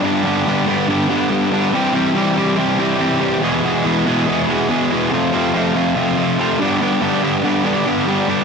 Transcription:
\new Staff \with { instrumentName = "Distorted electric guitar" } { \clef bass \time 4/4 \key g \mixolydian \tempo 4 = 142 <g, d g b d' g'>8 <g, d g b d' g'>8 <g, d g b d' g'>8 <g, d g b d' g'>8 <g, d g b d' g'>8 <g, d g b d' g'>8 <g, d g b d' g'>8 <g, d g b d' g'>8 | <c e g c' g'>8 <c e g c' g'>8 <c e g c' g'>8 <c e g c' g'>8 <c e g c' g'>8 <c e g c' g'>8 <c e g c' g'>8 <c e g c' g'>8 | <e, b, e gis b gis'>8 <e, b, e gis b gis'>8 <e, b, e gis b gis'>8 <e, b, e gis b gis'>8 <e, b, e gis b gis'>8 <e, b, e gis b gis'>8 <e, b, e gis b gis'>8 <e, b, e gis b gis'>8 | <f, c f a c' f'>8 <f, c f a c' f'>8 <f, c f a c' f'>8 <f, c f a c' f'>8 <f, c f a c' f'>8 <f, c f a c' f'>8 <f, c f a c' f'>8 <g, d g b d' g'>8 |
<g, d g b d' g'>8 <g, d g b d' g'>8 <g, d g b d' g'>8 <g, d g b d' g'>8 <g, d g b d' g'>8 <g, d g b d' g'>8 <g, d g b d' g'>8 <g, d g b d' g'>8 | }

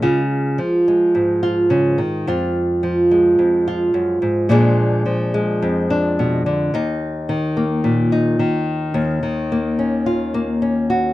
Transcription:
\new Staff \with { instrumentName = "Nylon-string guitar" } { \clef bass \time 4/4 \key des \mixolydian \tempo 4 = 108 << { <aes f'>4. aes4 f'4. | f'4. aes4 f'4. | <f aes d' aes'>4. aes4 d'4. | ees'4. bes4 ees'4. |
r4 bes8 des'8 f'8 bes8 des'8 ges'8 | } \\ { des4 f4 aes,4 des8 ees8 | f,4 f4 f,4 ges,8 aes,8 | bes,4 f4 f,4 ces8 d8 | ees,4 ees4 bes,4 ees4 |
ees,8 ees2.~ ees8 | } >> }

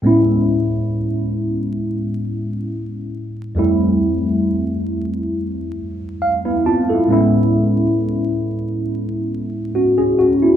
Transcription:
<<
  \new Staff \with { instrumentName = "Tine electric piano" } { \time 4/4 \key a \major \tempo 4 = 68 r1 | r2. f''16 <b e'>16 <c' f' a''>16 <e' a'>16~ | <e' a'>16 r2 r8. <cis' fis'>16 <cis' gis'>16 <cis' fis'>16 <b e'>16 | }
  \new Staff \with { instrumentName = "Tine electric piano" } { \time 4/4 \key a \major <a, gis b cis' e'>1 | <f, g a c' e'>2~ <f, g a c' e'>8 r4. | <a, gis b cis' e'>1 | }
>>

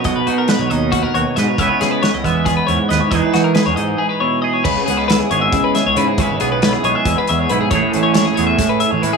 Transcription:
<<
  \new Staff \with { instrumentName = "Clean electric guitar" } { \time 7/8 \key e \lydian \tempo 4 = 137 dis''16 b'16 fis'16 ais'16 b'16 cis''16 dis''8 fis'16 ais'16 cis''8 dis''16 cis''16 | e''16 cis''16 gis'16 b'16 cis''16 dis''16 e''8 gis'16 b'16 cis''8 dis''16 cis''16 | dis''16 b'16 fis'16 ais'16 b'16 cis''16 dis''8 gis'16 b'16 cis''8 dis''16 cis''16 | \key cis \minor b'8 gis'16 b'16 b'16 gis'16 cis''16 e''8 b'16 e''16 cis''16 b'16 gis'16 |
b'8 gis'16 b'16 b'16 gis'16 cis''16 e''8 b'16 e''16 cis''16 b'16 gis'16 | cis''8 a'16 cis''16 cis''16 gis'16 cis''16 e''8 b'16 e''16 cis''16 b'16 gis'16 | }
  \new Staff \with { instrumentName = "Clean electric guitar" } { \time 7/8 \key e \lydian << { fis'8 dis'8 b'8 dis'4 fis'8 b'8 | <gis b e' b'>8 b8 b'8 b4 e'8 b'8 | <gis dis' e' gis'>8 dis'8 gis'8 dis'4 e'8 gis'8~ | \key cis \minor gis'8 b8 e'8 gis'4. e'8 |
r8 b8 e'8 gis'4. e'8 | <a cis' e' gis'>8 cis'8 e'8 gis'4. e'8 | } \\ { <b, fis>4. fis4 b,4 | cis4. gis4 gis,4 | e4. gis4 b,4 | cis4. gis4. gis,8 |
cis4. gis4. gis,8 | a,4. a4. e8 | } >> }
  \new Staff \with { instrumentName = "Picked electric bass" } { \clef bass \time 7/8 \key e \lydian b,,16 r16 b,8. b,,16 dis,4 dis,16 r16 gis,16 r16 | cis,16 r16 cis8. cis,16 e,4 e,16 r16 dis,16 r16 | e,16 r16 e8. e,16 gis,8 r4. | \key cis \minor cis,16 cis16 cis,4 gis,,8 cis8. cis,16 cis16 r16 |
cis,16 gis,,16 b,,4 b,,16 r16 e,16 r16 e,8 b,,16 r16 | a,,16 a,16 a,,4 e,8 a,8. a,,16 a,16 r16 | }
  \new DrumStaff \with { instrumentName = "Drums" } \drummode { \time 7/8 <hh bd>8 hh8 <hh sn>8 hh8 <hh bd>8 hh8 <hh sn>8 | <hh bd>8 <hh sn>8 <hh sn>8 <hh bd>8 <hh bd>8 hh8 <hh sn>8 | <hh bd>8 <hh sn>8 <hh sn>8 hh8 r4. | <cymc bd>8 hh8 <hh sn>8 hh8 <hh bd>8 <hh sn>8 hh8 |
<hh bd>8 hh8 <hh sn>8 hh8 <hh bd>8 hh8 hh8 | <hh bd>8 hh8 <hh sn>8 hh8 <hh bd sn>8 hh8 hh8 | }
>>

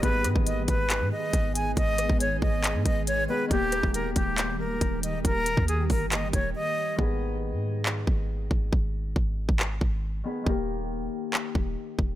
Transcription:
<<
  \new Staff \with { instrumentName = "Flute" } { \time 4/4 \key gis \minor \tempo 4 = 138 b'4 dis''8 b'4 dis''4 gis''8 | dis''4 cis''8 dis''4 dis''8 cis''8 b'8 | g'4 ais'8 g'4 ais'4 dis''8 | ais'4 gis'8 ais'8 dis''8 cis''8 dis''4 |
r1 | r1 | r1 | }
  \new Staff \with { instrumentName = "Harp" } { \time 4/4 \key gis \minor <dis b gis' b'>1~ | <dis b gis' b'>2.~ <dis b gis' b'>8 <dis b gis' b'>8 | <dis ais g' ais'>1~ | <dis ais g' ais'>1 |
<dis b gis' b'>1~ | <dis b gis' b'>2.~ <dis b gis' b'>8 <dis b gis' b'>8 | <dis ais g' ais'>1 | }
  \new Staff \with { instrumentName = "Ambient pad" } { \time 4/4 \key gis \minor <dis gis b gis'>1~ | <dis gis b gis'>1 | <dis g ais g'>1~ | <dis g ais g'>1 |
r1 | r1 | r1 | }
  \new Staff \with { instrumentName = "808-style bass" } { \clef bass \time 4/4 \key gis \minor gis,,8 gis,16 gis,,8. gis,,8. gis,16 r8 gis,,4 | gis,,8. gis,,8. gis,,8. gis,16 gis,,4 r8 | dis,,8. dis,,8. dis,,4. dis,,4 | dis,,8. dis,8. g,,4 dis,,8 r4 |
gis,,4~ gis,,16 gis,4~ gis,16 gis,,4 gis,,8 | gis,,4 gis,,8. gis,,8. gis,,4 r8 | dis,,4. r4 dis,,8 r8 dis,,8 | }
  \new DrumStaff \with { instrumentName = "Drums" } \drummode { \time 4/4 <hh bd>8 <hh ss>16 bd16 hh8 <hh bd>8 <hc hh>4 <hh bd>8 hh8 | <hh bd>8 <hh ss>16 bd16 hh8 bd8 <hc hh>8 <hh bd>8 hh4 | <hh bd>8 <hh ss>16 bd16 hh8 <hh bd>8 <hc hh>4 <hh bd>8 hh8 | <hh bd>8 hh16 bd16 hh8 <hho bd>8 <hc hh>8 <hh bd>8 r4 |
bd4 r4 hc8 bd8 r8 bd8 | bd4 bd8. bd16 hc8 bd8 r4 | bd4 r4 hc8 bd8 r8 bd8 | }
>>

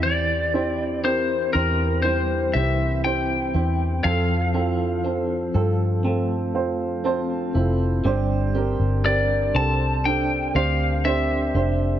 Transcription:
<<
  \new Staff \with { instrumentName = "Lead electric guitar" } { \time 4/4 \key g \dorian \tempo 4 = 60 d''4 c''8 bes'8 c''8 e''8 g''4 | f''2.~ f''8 r8 | r4 d''8 a''8 g''8 f''8 e''4 | }
  \new Staff \with { instrumentName = "Upright piano" } { \time 4/4 \key g \dorian << { e4 r2. | r2 r8 f''8 a''4 | g,4. r2 r8 | } \\ { <c' e' g' c''>8 <c' e' g' c''>8 <c' e' g' bes'>8 <c' e' g' c''>8 <c' e' g' c''>8 <c' e' g' c''>8 <c' e' g' c''>8 <c' e' g' c''>8 | <c' f' a'>8 <c' f' a'>8 <c' f' a'>8 <c' f' a'>8 <c' f' a'>8 <c' f' c''>8 <c' f' c''>8 <c' e' f' a'>8 | <c' d' g' c''>8 <c' d' g' bes'>8 <c' d' g' bes'>8 <c' d' g' a'>8 <c' d' g' a'>8 <c' d' g' c''>8 <c' d' g' c''>8 <c' d' g' c''>8 | } >> }
  \new Staff \with { instrumentName = "Clean electric guitar" } { \time 4/4 \key g \dorian e8 e'8 c'8 c''8 g8 e'8 c'8 e'8 | f8 e'8 c'8 a'8 a4 c'8 e'8 | g8 g'8 d'8 c''8 d'8 g'8 c''8 g'8 | }
  \new Staff \with { instrumentName = "Brass ensemble" } { \time 4/4 \key g \dorian <e c' g'>1 | <f c' a'>1 | <c' d' g'>1 | }
  \new Staff \with { instrumentName = "Fingered electric bass" } { \clef bass \time 4/4 \key g \dorian e,4. e,4 c,4 e,8 | f,4. g,4 f,4 f,,8 | g,,8. g,,8. c,4 d,4 f,,8 | }
>>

